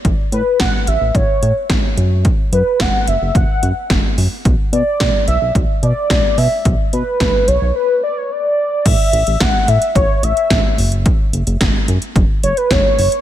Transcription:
<<
  \new Staff \with { instrumentName = "Soft synth lead" } { \time 4/4 \key b \minor \tempo 4 = 109 r8 b'8 fis''8 e''8 cis''4 r4 | r8 b'8 fis''8 e''8 fis''4 r4 | r8 d''4 e''8 r8 d''4 e''8 | r8 b'4 cis''8 b'8 d''16 cis''16 d''4 |
e''4 fis''8 e''8 cis''8 e''4 r8 | r2 r8 cis''16 b'16 cis''4 | }
  \new Staff \with { instrumentName = "Analog synth bass" } { \clef bass \time 4/4 \key b \minor a,,16 r16 a,16 r16 a,,16 r16 a,,16 a,,16 a,,16 r16 a,16 r16 a,,16 r16 fis,8~ | fis,16 r16 fis,16 r16 fis,,16 r16 fis,,16 fis,,16 fis,,16 r16 fis,16 r16 fis,,16 r16 fis,16 r16 | b,,16 r16 b,16 r16 b,,16 r16 b,,16 b,,16 b,,16 r16 b,16 r16 b,,16 r16 b,16 r16 | b,,16 r16 b,16 r16 b,,16 r16 b,,16 b,,16 r2 |
a,,16 r16 a,,16 a,,16 a,,16 r16 a,16 r16 a,,16 r16 a,,16 r16 a,,16 r16 fis,,8~ | fis,,16 r16 fis,,16 fis,,16 fis,,16 r16 fis,16 r16 fis,,16 r16 fis,,16 r16 fis,,16 r16 fis,,16 r16 | }
  \new DrumStaff \with { instrumentName = "Drums" } \drummode { \time 4/4 <hh bd>8 hh8 <hh bd sn>8 hh8 <hh bd>8 hh8 <hh bd sn>8 hh8 | <hh bd>8 hh8 <hh bd sn>8 hh8 <hh bd>8 hh8 <hh bd sn>8 hho8 | <hh bd>8 hh8 <hh bd sn>8 hh8 <hh bd>8 hh8 <hh bd sn>8 hho8 | <hh bd>8 hh8 <hh bd sn>8 hh8 r4 r4 |
<cymc hh bd>8 hh16 hh16 <hh bd sn>8 hh16 hh16 <hh bd>8 hh16 hh16 <hh bd sn>8 hho16 hh16 | <hh bd>8 hh16 hh16 <hh bd sn>8 hh16 hh16 <hh bd>8 hh16 hh16 <hh bd sn>8 hho16 hh16 | }
>>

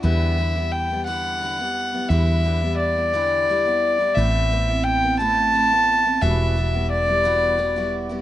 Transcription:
<<
  \new Staff \with { instrumentName = "Fiddle" } { \time 6/8 \key e \minor \tempo 4. = 58 e''4 g''8 fis''4. | e''4 d''2 | e''4 g''8 a''4. | e''4 d''4. r8 | }
  \new Staff \with { instrumentName = "Steel-string acoustic guitar" } { \time 6/8 \key e \minor <d e g b e'>8 <d g b e'>16 <g b e'>8 <g b e'>16 <d e g b e'>8 <d g b e'>16 <g b e'>8 <g b e'>16 | <d e g b e'>8 <d g b e'>16 <g b e'>8 <g b e'>16 <d e g b e'>8 <d g b e'>16 <g b e'>8 <g b e'>16 | <a, a b c' e'>8 <a b c' e'>16 <b c' e'>8 <b c' e'>16 <a, a b c' e'>8 <a b c' e'>16 <b c' e'>8 <b c' e'>16 | <e, e g b e' fis'>8 <g b e' fis'>16 <g b e' fis'>8 <g b e' fis'>16 <e, e g b e' fis'>8 <g b e' fis'>16 <g b e' fis'>8 <g b e' fis'>16 | }
  \new Staff \with { instrumentName = "Fretless electric bass" } { \clef bass \time 6/8 \key e \minor e,2. | e,2. | a,,2. | e,,2. | }
>>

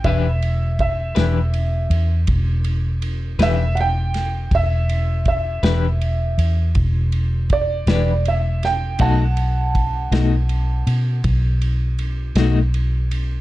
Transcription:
<<
  \new Staff \with { instrumentName = "Upright piano" } { \time 12/8 \key e \minor \tempo 4. = 54 e''4 e''2 r4. e''8 <fis'' g''>4 | e''4 e''2 r4 d''4 e''8 g''8 | <fis'' a''>2. r2. | }
  \new Staff \with { instrumentName = "Clean electric guitar" } { \time 12/8 \key e \minor <e d' g' b'>8 r4 <e d' g' b'>8 r2 r8 <e d' g' b'>8 r4 | r4. <e d' g' b'>8 r2 r8 <e d' g' b'>8 r4 | <b, a dis' fis'>8 r4 <b, a dis' fis'>8 r2 r8 <b, a dis' fis'>8 r4 | }
  \new Staff \with { instrumentName = "Fingered electric bass" } { \clef bass \time 12/8 \key e \minor e,,4. e,,4 e,8 e,,4. e,,4. | e,,4. e,,4 e,8 e,,4. e,,4. | b,,4. b,,4 b,8 b,,4. b,,4. | }
  \new DrumStaff \with { instrumentName = "Drums" } \drummode { \time 12/8 <bd cymr>8 cymr8 <bd cymr>8 <cymr sn>8 cymr8 cymr8 <bd cymr>8 cymr8 cymr8 <cymr sn>8 cymr8 <cymr sn>8 | <bd cymr>8 cymr8 <bd cymr>8 <cymr sn>8 cymr8 cymr8 <bd cymr>8 cymr8 <bd cymr>8 <cymr sn>8 cymr8 <cymr sn>8 | <bd cymr>8 cymr8 <bd cymr>8 <cymr sn>8 cymr8 cymr8 <bd cymr>8 cymr8 cymr8 <cymr sn>8 cymr8 cymr8 | }
>>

